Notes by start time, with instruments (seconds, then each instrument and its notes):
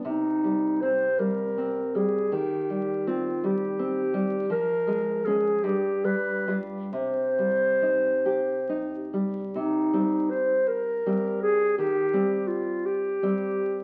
0.04 nylon-string guitar C3, clarinet D#4
0.44 nylon-string guitar G3
0.82 nylon-string guitar C4, clarinet C5
1.19 nylon-string guitar G3, clarinet A#4
1.58 nylon-string guitar C4
1.95 nylon-string guitar G3, clarinet G#4
2.32 nylon-string guitar D#3, clarinet G4
2.70 nylon-string guitar G3
3.07 nylon-string guitar C4, clarinet F4
3.44 nylon-string guitar G3, clarinet G4
3.79 nylon-string guitar C4
4.14 nylon-string guitar G3
4.50 nylon-string guitar F3, clarinet A#4
4.87 nylon-string guitar G#3
5.25 nylon-string guitar G#3 C#4, clarinet G#4
5.63 nylon-string guitar G2, clarinet G4
6.04 nylon-string guitar G3, clarinet B4
6.47 nylon-string guitar G3 F4
6.92 nylon-string guitar C3, clarinet C5
7.38 nylon-string guitar G3
7.82 nylon-string guitar D#4
8.26 nylon-string guitar G4
8.69 nylon-string guitar D#4
9.13 nylon-string guitar G3
9.53 nylon-string guitar C3, clarinet D#4
9.93 nylon-string guitar G3 C4
10.31 clarinet C5
10.68 clarinet A#4
11.06 nylon-string guitar G3 C4
11.42 clarinet G#4
11.78 nylon-string guitar D#3, clarinet G4
12.13 nylon-string guitar G3 C4
12.48 clarinet F4
12.86 clarinet G4
13.23 nylon-string guitar G3 C4